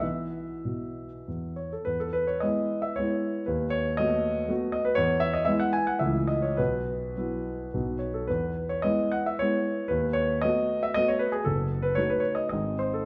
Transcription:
0.00 0.46 E3 soft
0.00 0.53 B3 soft
0.00 0.53 E4 soft
0.00 1.56 E5 medium
0.65 1.08 B2 soft
1.28 1.70 E2 soft
1.56 1.73 C#5 medium
1.73 1.87 A4 soft
1.85 2.41 E2 soft
1.85 2.00 B4 medium
2.00 2.15 A4 medium
2.13 2.28 B4 medium
2.27 2.42 C#5 medium
2.40 2.93 G#3 soft
2.40 2.94 B3 soft
2.40 2.94 E4 soft
2.40 2.83 D#5 medium
2.82 2.96 E5 medium
2.96 3.44 G#3 soft
2.96 3.44 B3 soft
2.96 3.44 E4 soft
2.96 3.46 C#5 medium
3.46 3.97 D#2 medium
3.46 3.71 B4 medium
3.70 3.98 C#5 medium
3.97 4.47 A3 soft
3.97 4.47 B3 soft
3.97 4.47 F#4 medium
3.97 4.49 D#5 medium
4.49 4.93 A3 soft
4.49 4.94 B3 soft
4.49 4.94 F#4 soft
4.72 4.85 D#5 medium
4.85 4.97 B4 medium
4.95 5.47 E2 medium
4.95 5.21 C#5 medium
5.20 5.34 E5 medium
5.33 5.48 D#5 medium
5.45 5.99 G#3 soft
5.45 5.99 B3 soft
5.45 6.00 E4 soft
5.45 5.61 E5 medium
5.60 5.75 F#5 medium
5.73 5.88 G#5 medium
5.87 6.02 F#5 medium
5.99 6.56 C#2 medium
5.99 6.54 E3 soft
5.99 6.54 A3 soft
5.99 6.54 E4 soft
5.99 6.29 E5 medium
6.28 6.43 D#5 medium
6.42 6.58 C#5 medium
6.57 7.15 B1 soft
6.57 8.01 B4 medium
7.16 7.70 F#3 soft
7.16 7.70 B3 soft
7.16 7.70 E4 soft
7.74 8.27 B1 soft
7.74 8.25 F#3 soft
7.74 8.25 B3 soft
7.74 8.25 D#4 soft
7.99 8.14 C#5 medium
8.14 8.28 A4 medium
8.27 8.83 E2 medium
8.27 8.69 B4 medium
8.69 8.84 C#5 medium
8.82 9.36 G#3 soft
8.82 9.36 B3 soft
8.82 9.36 E4 soft
8.82 9.12 D#5 medium
9.12 9.26 F#5 medium
9.26 9.40 E5 medium
9.39 9.87 G#3 soft
9.39 9.87 B3 soft
9.39 9.87 E4 soft
9.39 9.90 C#5 medium
9.88 10.41 D#2 medium
9.88 10.15 B4 medium
10.13 10.41 C#5 medium
10.42 10.92 A3 soft
10.42 10.92 B3 soft
10.42 10.92 F#4 medium
10.42 10.82 D#5 medium
10.83 10.95 E5 medium
10.94 11.42 A3 soft
10.94 11.42 B3 soft
10.94 11.42 F#4 medium
10.94 11.07 D#5 medium
11.08 11.20 C#5 medium
11.19 11.32 B4 medium
11.32 11.45 G#4 medium
11.45 11.96 F#1 medium
11.45 11.83 A4 medium
11.82 11.97 B4 medium
11.95 12.49 A3 soft
11.95 12.49 D#4 soft
11.95 12.49 F#4 soft
11.95 12.10 C#5 medium
12.10 12.24 B4 medium
12.20 12.36 C#5 medium
12.35 12.48 D#5 medium
12.49 13.05 G#1 medium
12.49 13.05 G#3 soft
12.49 13.05 C4 soft
12.49 13.05 D#4 soft
12.49 12.80 D#5 medium
12.79 12.95 C5 medium
12.94 13.05 A4 medium

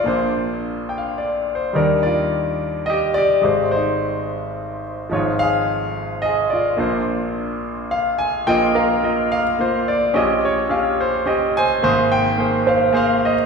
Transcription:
0.00 1.70 A#3 medium
0.00 1.43 F4 medium
0.00 1.17 D5 medium
0.06 1.70 A#1 soft
0.06 1.70 A#2 soft
0.06 1.71 D4 medium
0.06 1.54 C5 medium
0.89 0.98 G5 soft
0.98 1.16 F5 soft
1.18 1.53 D5 medium
1.55 1.73 C5 soft
1.73 3.39 D#2 soft
1.73 3.39 D#3 soft
1.73 3.39 G3 medium
1.73 3.40 D#4 soft
1.73 2.04 A#4 medium
1.73 2.01 D5 medium
1.77 2.02 D4 medium
2.03 2.84 F4 soft
2.03 2.90 D5 medium
2.86 3.15 G4 medium
2.86 3.15 D#5 medium
3.14 3.42 G4 medium
3.14 3.72 D5 medium
3.41 5.07 G#1 soft
3.41 5.07 G#2 soft
3.41 5.07 G#3 soft
3.41 5.08 G4 soft
3.41 3.70 C5 medium
3.71 4.79 C5 medium
3.75 4.81 D#4 soft
5.09 6.75 G#1 medium
5.09 6.75 G#2 soft
5.09 6.75 F3 soft
5.09 6.76 D#4 medium
5.09 6.76 C#5 medium
5.15 5.39 F4 medium
5.39 6.20 G#4 medium
5.39 6.25 F5 loud
6.22 6.50 G#4 medium
6.22 6.51 D#5 medium
6.50 8.17 F4 medium
6.50 8.15 D5 medium
6.77 8.43 A#1 medium
6.77 8.43 A#2 soft
6.77 8.43 A#3 medium
6.77 8.44 D4 soft
6.77 8.45 C5 medium
7.91 8.18 F5 medium
8.19 8.48 G#5 medium
8.47 10.12 A#1 medium
8.47 10.12 A#2 medium
8.47 8.92 A#3 medium
8.47 8.93 F4 medium
8.47 8.93 D#5 medium
8.47 8.76 G5 medium
8.75 9.42 A#4 medium
8.75 9.30 F5 medium
9.03 9.43 A#3 medium
9.03 9.43 F4 soft
9.03 9.43 D#5 medium
9.32 9.89 F5 medium
9.59 10.15 A#3 medium
9.59 10.16 F4 medium
9.59 10.16 C5 medium
9.88 10.17 D5 medium
10.14 11.79 A#1 medium
10.14 11.79 A#2 medium
10.14 10.59 C#4 medium
10.14 10.18 G4 medium
10.14 10.60 D#5 medium
10.19 10.69 G4 medium
10.45 11.02 C#5 medium
10.69 11.10 C#4 medium
10.69 11.10 G4 medium
10.69 11.10 F5 medium
11.00 11.29 C5 medium
11.26 11.82 C#4 medium
11.26 11.83 G4 medium
11.26 11.83 D#5 medium
11.57 11.82 C5 medium
11.57 12.13 G#5 loud
11.82 13.46 G#1 medium
11.82 13.46 G#2 medium
11.82 12.27 A#3 medium
11.82 12.28 G#4 medium
11.82 12.28 C5 medium
12.12 12.69 G5 medium
12.38 12.78 A#3 medium
12.38 12.78 G#4 soft
12.38 12.79 C5 medium
12.67 13.33 C5 medium
12.67 12.95 F5 medium
12.93 13.46 A#3 medium
12.93 13.46 G#4 medium
12.93 13.25 C5 medium
12.93 13.24 F5 medium
13.25 13.46 C5 medium
13.25 13.46 D#5 medium

